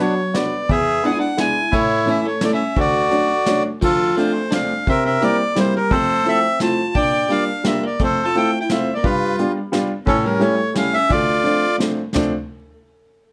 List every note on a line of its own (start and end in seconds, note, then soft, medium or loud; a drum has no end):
0.00 0.17 F#3 medium
0.00 0.33 F#3 medium
0.00 0.17 B3 medium
0.00 0.14 D4 medium
0.00 0.17 D4 medium
0.00 0.17 F#4 medium
0.00 0.36 C#5 medium
0.34 0.52 F#3 medium
0.34 0.52 B3 medium
0.34 0.67 B3 medium
0.34 0.53 D4 medium
0.34 0.53 F#4 medium
0.34 0.70 D5 medium
0.34 snare medium
0.34 closed hi-hat soft
0.69 0.95 E2 medium
0.69 1.02 B3 medium
0.69 1.18 G#4 medium
0.69 1.05 E5 loud
0.69 kick medium
0.69 closed hi-hat soft
1.03 1.21 G#3 medium
1.03 1.21 B3 medium
1.03 1.22 D4 medium
1.03 1.10 D4 medium
1.03 1.22 E4 medium
1.03 1.12 F#5 loud
1.03 closed hi-hat soft
1.10 1.17 E4 medium
1.10 1.18 G#5 medium
1.19 1.37 D4 medium
1.19 1.40 F#5 medium
1.37 1.55 G#3 medium
1.37 1.55 B3 medium
1.37 1.56 D4 medium
1.37 1.56 E4 medium
1.37 1.71 E4 medium
1.37 1.74 G#5 loud
1.37 snare medium
1.37 closed hi-hat soft
1.71 1.98 A2 medium
1.71 2.06 A3 medium
1.71 2.21 E4 medium
1.71 2.09 C#5 loud
1.71 kick medium
1.71 closed hi-hat soft
2.06 2.24 E3 medium
2.06 2.25 A3 medium
2.06 2.25 C#4 medium
2.06 2.24 C#4 medium
2.06 2.25 E4 medium
2.06 2.27 E5 loud
2.06 closed hi-hat soft
2.25 2.41 A3 medium
2.25 2.43 C#5 medium
2.41 2.59 E3 medium
2.41 2.59 A3 medium
2.41 2.51 A3 medium
2.41 2.60 C#4 medium
2.41 2.60 E4 medium
2.41 2.51 D5 medium
2.41 snare medium
2.41 closed hi-hat soft
2.53 2.76 C#4 medium
2.53 2.79 E5 medium
2.76 3.03 D2 medium
2.76 3.62 A3 medium
2.76 3.62 F#4 medium
2.76 3.63 D5 loud
2.76 kick medium
2.76 closed hi-hat soft
3.10 3.29 F#3 medium
3.10 3.29 A3 medium
3.10 3.29 C#4 medium
3.10 3.29 D4 medium
3.10 closed hi-hat soft
3.46 3.65 F#3 medium
3.46 3.65 A3 medium
3.46 3.65 C#4 medium
3.46 3.65 D4 medium
3.46 snare medium
3.46 closed hi-hat medium
3.81 4.08 D2 medium
3.81 4.15 F3 medium
3.81 4.32 F4 medium
3.81 4.16 A4 loud
3.81 kick medium
3.81 crash medium
4.16 4.35 F3 medium
4.16 4.49 A3 medium
4.16 4.35 A3 medium
4.16 4.35 C4 medium
4.16 4.36 D4 medium
4.16 4.54 C5 medium
4.16 closed hi-hat soft
4.51 4.70 F3 medium
4.51 4.70 A3 medium
4.51 4.70 C4 medium
4.51 4.84 D4 medium
4.51 4.70 D4 medium
4.51 4.89 F5 medium
4.51 snare medium
4.51 closed hi-hat soft
4.87 5.13 C3 medium
4.87 5.05 C4 medium
4.87 5.37 A#4 medium
4.87 5.04 E5 loud
4.87 kick medium
4.87 closed hi-hat soft
5.05 5.21 C4 medium
5.05 5.23 E5 medium
5.21 5.39 G3 medium
5.21 5.39 A#3 medium
5.21 5.54 A#3 medium
5.21 5.39 C4 medium
5.21 5.40 E4 medium
5.21 5.58 D5 loud
5.21 closed hi-hat soft
5.55 5.74 G3 medium
5.55 5.74 A#3 medium
5.55 5.74 C4 medium
5.55 5.74 E4 medium
5.55 snare medium
5.55 closed hi-hat soft
5.59 5.75 C5 loud
5.76 5.91 G3 medium
5.76 5.92 A#4 loud
5.91 6.17 F2 medium
5.91 6.25 A3 medium
5.91 6.40 A4 medium
5.91 6.27 C5 loud
5.91 kick medium
5.91 closed hi-hat soft
6.25 6.43 F3 medium
6.25 6.43 A3 medium
6.25 6.43 C4 medium
6.25 6.43 E4 medium
6.25 6.59 E5 loud
6.25 closed hi-hat soft
6.29 6.59 C4 medium
6.60 6.78 F3 medium
6.60 6.78 A3 medium
6.60 6.78 C4 medium
6.60 6.78 E4 medium
6.60 6.94 F4 medium
6.60 6.97 A5 loud
6.60 snare medium
6.60 closed hi-hat soft
6.94 7.20 A#2 medium
6.94 7.28 D4 loud
6.94 7.44 D5 medium
6.94 7.31 G5 loud
6.94 kick medium
6.94 closed hi-hat soft
7.29 7.47 G3 medium
7.29 7.47 A#3 medium
7.29 7.47 D4 medium
7.29 7.63 D4 medium
7.29 7.48 F4 medium
7.29 7.66 F5 loud
7.29 closed hi-hat soft
7.64 7.82 G3 medium
7.64 7.82 A#3 soft
7.64 7.82 A#3 medium
7.64 7.83 D4 medium
7.64 7.83 F4 medium
7.64 7.84 E5 medium
7.64 snare medium
7.64 closed hi-hat soft
7.83 7.99 A#3 medium
7.83 8.02 D5 medium
7.99 8.26 F2 medium
7.99 8.22 A3 medium
7.99 kick medium
7.99 closed hi-hat soft
8.04 8.51 A4 medium
8.04 8.26 C5 loud
8.24 8.35 F4 medium
8.24 8.36 A5 medium
8.35 8.53 A3 medium
8.35 8.53 C4 medium
8.35 8.53 E4 medium
8.35 8.58 E4 medium
8.35 8.53 F4 medium
8.35 8.59 G5 loud
8.35 closed hi-hat soft
8.61 8.70 E4 medium
8.61 8.71 G5 medium
8.70 8.87 A3 medium
8.70 8.87 C4 medium
8.70 8.92 C4 medium
8.70 8.88 E4 medium
8.70 8.88 F4 medium
8.70 8.94 E5 medium
8.70 snare medium
8.70 closed hi-hat soft
8.94 9.05 A#3 medium
8.94 9.05 D5 medium
9.03 9.30 G2 medium
9.03 9.37 G3 medium
9.03 9.52 F4 medium
9.03 9.36 B4 medium
9.03 kick medium
9.03 closed hi-hat soft
9.39 9.57 G3 medium
9.39 9.56 B3 medium
9.39 9.57 D4 medium
9.39 9.57 F4 medium
9.39 closed hi-hat soft
9.72 9.90 G3 medium
9.72 9.90 B3 medium
9.72 9.90 D4 medium
9.72 9.90 F4 medium
9.72 snare medium
9.72 closed hi-hat medium
10.06 10.32 A2 medium
10.06 10.24 E3 medium
10.06 10.55 C#4 medium
10.06 10.25 A4 loud
10.06 kick medium
10.06 closed hi-hat soft
10.25 10.41 G3 medium
10.25 10.42 A#4 medium
10.39 10.58 G3 medium
10.39 10.59 A3 medium
10.39 10.74 A3 medium
10.39 10.59 C#4 medium
10.39 10.59 E4 medium
10.39 10.74 C#5 loud
10.39 closed hi-hat soft
10.74 10.93 G3 medium
10.74 10.93 A3 soft
10.74 10.93 C#4 medium
10.74 10.93 C#4 loud
10.74 10.94 E4 medium
10.74 10.95 F5 loud
10.74 snare medium
10.74 closed hi-hat soft
10.94 11.10 C#4 medium
10.94 11.11 E5 loud
11.09 11.36 D2 medium
11.09 11.76 F4 medium
11.09 11.76 D5 loud
11.09 kick medium
11.09 closed hi-hat soft
11.13 11.78 A3 medium
11.43 11.62 F3 medium
11.43 11.62 A3 medium
11.43 11.62 C4 medium
11.43 11.62 D4 medium
11.43 closed hi-hat soft
11.78 11.97 F3 medium
11.78 11.98 A3 medium
11.78 11.98 C4 medium
11.78 11.98 D4 medium
11.78 snare medium
11.78 closed hi-hat medium
12.14 12.31 F3 medium
12.14 12.31 A3 medium
12.14 12.31 C4 medium
12.14 12.31 D4 medium
12.14 snare medium
12.14 floor tom medium
12.14 crash soft